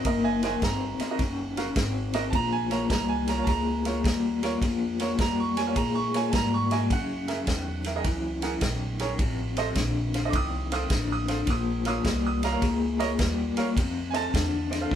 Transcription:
0.05 upright bass F#1, clean electric guitar D#3 A#3, upright piano A#4 D#5, kick, ride
0.24 upright piano D#5 G#5
0.43 clean electric guitar D#3 A#3, upright piano F#4 A#4 C5 D#5 G#5, snare, ride
0.62 upright bass G1, clean electric guitar D#3 C4, upright piano A#5, kick, snare, ride
1.00 clean electric guitar D#3 C4, upright piano A#4 D#5, muted upright bass stroke, snare, ride
1.11 upright piano F#4 A#4 D#5
1.19 upright bass F#1, clean electric guitar D#3 C#4, kick, snare, ride
1.57 clean electric guitar D#3 C#4, upright piano F#4 A#4 F5, snare, ride
1.76 upright bass G#1, clean electric guitar D#3 C4, kick, snare, ride
2.14 clean electric guitar D#3 C4, upright piano F#4 A#4 D#5, snare, ride
2.30 upright bass A#1, clean electric guitar A#2 F3, upright piano A5, kick, ride
2.35 upright piano A#5
2.52 upright piano G#5
2.71 clean electric guitar A#2 F3, upright piano F4 A#4 C#5 A#5, snare, ride
2.90 upright bass C2, clean electric guitar A#2 G3, upright piano A#5, kick, snare, ride
3.09 upright piano G#5
3.28 clean electric guitar A#2 G3, upright piano A#4 C#5 A#5, snare, ride
3.38 upright piano F4 A#4 C#5
3.44 upright bass C#2, clean electric guitar A#2 G#3, upright piano A5, kick, ride
3.48 upright piano A#5, snare
3.85 clean electric guitar A#2 G#3, upright piano F4 A#4 C#5, snare, ride
4.04 upright bass D#2, clean electric guitar A#2 G3, kick, snare, ride
4.43 clean electric guitar A#2 G3, upright piano F4 A#4 C#5, snare, ride
4.62 upright bass F2, clean electric guitar A#2 F3, kick, snare, ride
5.00 clean electric guitar A#2 F3, upright piano F4 A#4 C#5, snare, ride
5.19 upright bass F2, clean electric guitar A#2 G3, upright piano A#5, kick, snare, ride
5.40 upright piano C#6
5.57 clean electric guitar A#2 G3, upright piano A#4 C#5 G#5, snare, ride
5.67 upright piano F4 A#4 C#5
5.76 clean electric guitar A#2 G#3, upright bass A#2, upright piano A#5, kick, ride
5.95 upright piano C#6
6.14 clean electric guitar A#2 G#3, upright piano F4 A#4 C#5 G#5, snare, ride
6.32 upright bass G#2, clean electric guitar A#2 G3, upright piano A5 A#5, kick, snare, ride
6.54 upright piano C#6
6.71 clean electric guitar A#2 G3, upright piano F4 A#4 D#5 G#5, snare, ride
6.90 upright bass F#2, clean electric guitar F#2 C#3, upright piano F#5, kick, snare, ride
7.28 clean electric guitar F#2 C#3, upright piano G#4 A#4 E5, snare, ride
7.47 upright bass E2, clean electric guitar F#2 D#3, kick, snare, ride
7.84 clean electric guitar F#2 D#3, upright piano A#4 E5, snare, ride
7.96 upright piano G#4 A#4 D#5
8.04 upright bass C#2, clean electric guitar F#2 E3, kick, snare, ride
8.42 clean electric guitar F#2 E3, upright piano G#4 A#4 F#5, snare, ride
8.61 upright bass A#1, clean electric guitar F#2 D#3, kick, snare, ride
8.99 clean electric guitar F#2 D#3, upright piano G#4 A#4 C#5, snare, ride
9.19 upright bass A1, clean electric guitar F2 C3, kick, ride
9.57 clean electric guitar F2 C3, upright piano A4 C5 D#5, snare, ride
9.75 upright bass A#1, clean electric guitar F2 D3, kick, snare, ride
10.14 clean electric guitar F2 D3, upright piano C5 F5, snare, ride
10.25 upright piano A4 C5 D#5
10.30 upright bass C2, upright piano D6, kick, ride
10.34 clean electric guitar F2 D#3, upright piano D#6
10.72 clean electric guitar F2 D#3, upright piano A4 C5 F5 D#6, snare, ride
10.90 upright bass A1, clean electric guitar F2 D3, kick, snare, ride
11.12 upright piano D#6
11.28 clean electric guitar F2 D3, upright piano A4 C5 F5, snare, ride
11.47 upright bass A#1, clean electric guitar A#2 F3, upright piano D#6, kick, snare, ride
11.85 clean electric guitar A#2 F3, upright piano A#4 C#5 F5 D#6, snare, ride
12.05 upright bass C2, clean electric guitar A#2 G3, kick, snare, ride
12.27 upright piano D#6
12.43 clean electric guitar A#2 G3, upright piano C#5 D#5 F5 A#5, snare, ride
12.52 upright piano A#4 C#5 F5
12.62 upright bass C#2, clean electric guitar A#2 G#3, kick, snare, ride
12.99 clean electric guitar A#2 G#3, upright piano A#4 C#5 D#5, snare, ride
13.19 upright bass D#2, clean electric guitar A#2 G3, kick, snare, ride
13.57 clean electric guitar A#2 G3, upright piano A#4 C#5 F5, muted upright bass stroke, snare, ride
13.77 upright bass F2, clean electric guitar F2 C3, kick, snare, ride
14.11 clean electric guitar F2 C3, upright piano A4 C5 D#5 G#5, ride
14.16 upright piano A5, snare
14.34 upright bass E2, clean electric guitar F2 D3, kick, snare, ride
14.71 clean electric guitar F2 D3, upright piano C5 D#5, snare, ride
14.81 upright piano A4 C5 F5
14.91 upright bass D#2, clean electric guitar F2 D#3, kick

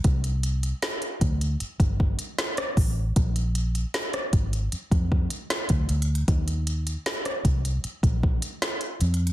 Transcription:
0.04 fingered electric bass C2, kick, closed hi-hat
0.24 closed hi-hat
0.43 closed hi-hat
0.63 closed hi-hat
0.82 snare, closed hi-hat
1.02 closed hi-hat
1.21 fingered electric bass D2, kick, closed hi-hat
1.41 closed hi-hat
1.60 muted fingered electric bass stroke, closed hi-hat
1.80 fingered electric bass G1, kick, closed hi-hat
2.00 kick
2.19 closed hi-hat
2.38 snare, closed hi-hat
2.57 cross-stick, closed hi-hat
2.77 fingered electric bass A1, kick, open hi-hat
3.16 fingered electric bass A#1, kick, closed hi-hat
3.36 closed hi-hat
3.55 closed hi-hat
3.75 closed hi-hat
3.94 snare, closed hi-hat
4.13 cross-stick, closed hi-hat
4.33 fingered electric bass G#1, kick, closed hi-hat
4.53 closed hi-hat
4.72 muted fingered electric bass stroke, closed hi-hat
4.91 fingered electric bass F2, kick, closed hi-hat
5.12 kick
5.30 closed hi-hat
5.50 snare, closed hi-hat
5.69 fingered electric bass D2, kick, closed hi-hat
5.89 fingered electric bass D2, closed hi-hat, open hi-hat
6.02 closed hi-hat
6.15 closed hi-hat
6.28 fingered electric bass D#2, kick, closed hi-hat
6.48 closed hi-hat
6.67 closed hi-hat
6.87 closed hi-hat
7.06 snare, closed hi-hat
7.25 cross-stick, closed hi-hat
7.45 fingered electric bass C2, kick, closed hi-hat
7.65 closed hi-hat
7.84 muted fingered electric bass stroke, closed hi-hat
8.03 fingered electric bass A#1, kick, closed hi-hat
8.23 kick
8.42 closed hi-hat
8.62 snare, closed hi-hat
8.81 closed hi-hat
9.01 fingered electric bass F2, closed hi-hat, open hi-hat
9.14 closed hi-hat
9.27 closed hi-hat

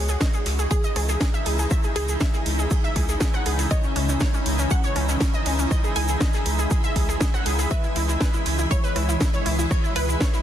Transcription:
Already playing: analog synth bass C#2, ambient pad C#3 E3 G#3 D#4 E4, synth pluck C#5
0.09 synth pluck G#4, snare, shaker
0.21 synth pluck D#5, kick, snare, ride, shaker
0.33 synth pluck G#4, shaker
0.46 analog synth bass C#2, snare, open hi-hat, ride
0.59 synth pluck G#4, shaker
0.71 synth pluck G#4, kick, ride, shaker
0.84 synth pluck D#5, shaker
0.96 analog synth bass C#2, synth pluck G#4, cross-stick, open hi-hat, ride
1.09 synth pluck G#4, snare, shaker
1.21 synth pluck G#4, kick, snare, ride, shaker
1.34 synth pluck E5, shaker
1.45 analog synth bass C#2, synth pluck G#4, open hi-hat
1.59 synth pluck G#4, shaker
1.71 synth pluck E5, kick, cross-stick, ride, shaker
1.84 synth pluck G#4, shaker
1.96 analog synth bass C#2, synth pluck G#4, open hi-hat, ride
2.09 synth pluck G#4, shaker
2.20 synth pluck E5, kick, snare, ride, shaker
2.34 synth pluck G#4, snare, shaker
2.46 analog synth bass C#2, open hi-hat, ride
2.59 synth pluck G#4, shaker
2.71 synth pluck G#4, kick, ride, shaker
2.84 synth pluck E5, ride, shaker
2.96 analog synth bass C#2, synth pluck G#4, kick, open hi-hat, ride
3.09 synth pluck G#4, snare, shaker
3.20 synth pluck G#4, kick, snare, ride, shaker
3.34 synth pluck F#5, cross-stick, shaker
3.46 analog synth bass C#2, synth pluck G#4, open hi-hat, ride
3.59 synth pluck G#4, snare, open hi-hat, shaker
3.70 synth pluck C#5 D#5, kick, cross-stick, ride, shaker
3.83 synth pluck C#4, shaker
3.96 analog synth bass C#2, synth pluck C#4, open hi-hat, ride
4.09 synth pluck C#4, snare, shaker
4.20 synth pluck C#5, kick, snare, ride, shaker
4.34 synth pluck C#4, shaker
4.46 analog synth bass C#2, open hi-hat, ride
4.58 synth pluck C#4, snare, shaker
4.71 synth pluck C#4 F#5, kick, ride, shaker
4.84 synth pluck C#5, shaker
4.96 analog synth bass C#2, synth pluck C#4, cross-stick, open hi-hat, ride
5.09 synth pluck C#4, snare, shaker
5.20 synth pluck C#4, kick, snare, ride, shaker
5.34 synth pluck D#5, shaker
5.46 analog synth bass C#2, synth pluck C#4, open hi-hat
5.59 synth pluck C#4, shaker
5.70 synth pluck D#5, kick, cross-stick, ride, shaker
5.84 synth pluck G#4, shaker
5.96 analog synth bass C#2, synth pluck G#4 G#5, open hi-hat, ride
6.08 synth pluck G#4, shaker
6.20 synth pluck D#5, kick, snare, ride, shaker
6.33 synth pluck G#4, snare, shaker
6.45 analog synth bass C#2, open hi-hat, ride
6.59 synth pluck G#4, shaker
6.71 synth pluck G#4, kick, ride, shaker
6.84 synth pluck E5, ride, shaker
6.96 analog synth bass C#2, synth pluck G#4, kick, open hi-hat, ride
7.08 synth pluck G#4, snare, shaker
7.20 synth pluck G#4, kick, snare, ride, shaker
7.34 synth pluck F#5, cross-stick, shaker
7.46 analog synth bass C#2, synth pluck G#4, open hi-hat, ride
7.59 synth pluck G#4, snare, open hi-hat, shaker
7.71 ambient pad B2 G#4, synth pluck B4 E5, kick, cross-stick, ride, shaker
7.84 synth pluck E4, shaker
7.96 analog synth bass C#2, synth pluck E4, open hi-hat, ride
8.08 synth pluck E4, snare, shaker
8.20 synth pluck B4, kick, snare, ride, shaker
8.34 synth pluck E4, shaker
8.45 analog synth bass C#2, snare, open hi-hat, ride
8.59 synth pluck E4, shaker
8.71 synth pluck E4 C#5, kick, ride, shaker
8.84 synth pluck B4, shaker
8.96 analog synth bass C#2, synth pluck E4, cross-stick, open hi-hat, ride
9.09 synth pluck E4, snare, shaker
9.21 synth pluck E4, kick, snare, ride, shaker
9.34 synth pluck C#5, shaker
9.46 analog synth bass C#2, synth pluck E4, open hi-hat
9.59 synth pluck E4, shaker
9.71 synth pluck C#5, kick, cross-stick, ride, shaker
9.84 synth pluck E4, shaker
9.96 analog synth bass C#2, synth pluck E4 B4, open hi-hat, ride
10.09 synth pluck E4, shaker
10.21 synth pluck C#5, kick, snare, ride, shaker
10.33 synth pluck E4, snare, shaker

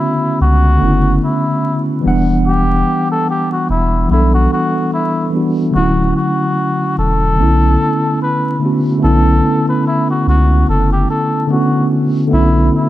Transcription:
Already playing: tine electric piano D3 A3 B3 C#4 F#4, muted trumpet E4
0.41 sub bass C#2, muted trumpet F#4
0.78 sub bass F#1, tine electric piano D3 A3 B3
0.83 tine electric piano C#4 E4
1.24 muted trumpet E4
2.01 tine electric piano E3 G3 B3
2.05 sub bass E1, tine electric piano D4 F#5
2.47 muted trumpet G4
3.12 muted trumpet A4
3.30 muted trumpet G4
3.53 muted trumpet F#4
3.69 sub bass E1, muted trumpet E4
4.07 sub bass B1, tine electric piano E3 G3 B3
4.11 tine electric piano D4 A4, muted trumpet E4
4.34 muted trumpet F#4
4.53 muted trumpet F#4
4.94 muted trumpet E4
5.30 tine electric piano E3 G3 B3
5.35 tine electric piano D4 F#4
5.71 tine electric piano D3 F#3 A3
5.75 sub bass D1, tine electric piano C#4 E4, muted trumpet F#4
6.17 muted trumpet F#4
6.98 sub bass E1, muted trumpet A4
7.36 sub bass B1, tine electric piano D3 A3 B3
7.41 tine electric piano C#4 E4
8.22 muted trumpet B4
8.59 tine electric piano D3 A3 B3
8.64 tine electric piano C#4 F#4
8.98 tine electric piano D3 A3 B3
9.03 sub bass B1, tine electric piano C#4 E4, muted trumpet A4
9.69 muted trumpet B4
9.87 muted trumpet E4
10.10 muted trumpet F#4
10.27 sub bass C#2, muted trumpet F#4
10.68 sub bass F#1, muted trumpet A4
10.93 muted trumpet G4
11.10 muted trumpet A4
11.47 tine electric piano D3 A3 B3
11.52 tine electric piano C#4 F#4, muted trumpet F#4
12.27 tine electric piano D3 A3 B3
12.32 sub bass B1, tine electric piano C#4 E4, muted trumpet E4
12.76 muted trumpet E4

